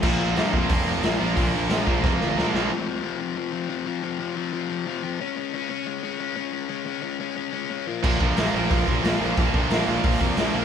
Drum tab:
CC |x-------|--------|--------|--------|
HH |--o-o-o-|o-o-----|--------|--------|
SD |--o---o-|--o-oooo|--------|--------|
BD |o--oo---|o--oo---|--------|--------|

CC |--------|--------|x-------|--------|
HH |--------|--------|--o-o-o-|o-o-o-o-|
SD |--------|--------|--o---o-|--o---o-|
BD |--------|--------|oo--oo--|oo--oo--|